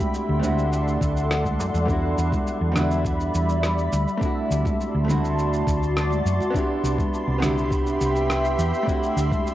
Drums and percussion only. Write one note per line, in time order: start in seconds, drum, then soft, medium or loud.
0.00 high conga medium
0.00 cabasa soft
0.14 cabasa soft
0.43 high conga medium
0.43 low conga medium
0.43 cabasa medium
0.58 cabasa soft
0.73 cabasa soft
0.88 cabasa soft
1.01 kick loud
1.01 cabasa medium
1.17 cabasa soft
1.31 cross-stick medium
1.31 cabasa soft
1.45 kick medium
1.45 high conga medium
1.45 cabasa soft
1.60 cabasa medium
1.74 high conga medium
1.74 cabasa soft
1.88 kick loud
1.88 cabasa soft
2.18 cabasa medium
2.32 kick loud
2.32 high conga medium
2.32 cabasa soft
2.47 cabasa soft
2.76 cross-stick medium
2.76 high conga medium
2.76 low conga medium
2.76 cabasa medium
2.91 cabasa soft
3.05 kick loud
3.05 cabasa soft
3.20 cabasa soft
3.35 cabasa medium
3.49 cabasa soft
3.63 cross-stick medium
3.63 cabasa soft
3.78 cabasa soft
3.93 cabasa medium
4.08 cabasa soft
4.21 kick loud
4.21 cabasa soft
4.51 cabasa medium
4.65 kick loud
4.65 high conga medium
4.65 cabasa soft
4.81 cabasa soft
5.09 high conga medium
5.09 low conga medium
5.09 cabasa medium
5.25 cabasa soft
5.39 cabasa soft
5.54 cabasa soft
5.67 kick medium
5.67 cabasa medium
5.83 cabasa soft
5.97 cross-stick medium
5.97 cabasa soft
6.11 high conga medium
6.11 cabasa soft
6.26 cabasa medium
6.41 high conga medium
6.41 cabasa soft
6.54 kick loud
6.54 cabasa soft
6.84 cabasa medium
6.98 kick loud
6.98 high conga medium
6.98 cabasa soft
7.14 cabasa soft
7.42 cross-stick medium
7.42 high conga medium
7.42 low conga medium
7.42 cabasa medium
7.58 cabasa soft
7.71 kick loud
7.71 cabasa soft
7.87 cabasa soft
8.01 cabasa medium
8.16 cabasa soft
8.30 cross-stick medium
8.30 cabasa soft
8.45 cabasa soft
8.59 cabasa medium
8.74 cabasa soft
8.87 kick loud
8.87 cabasa soft
9.03 cabasa soft
9.17 cabasa medium
9.31 kick loud
9.31 high conga medium
9.31 cabasa soft
9.47 cabasa soft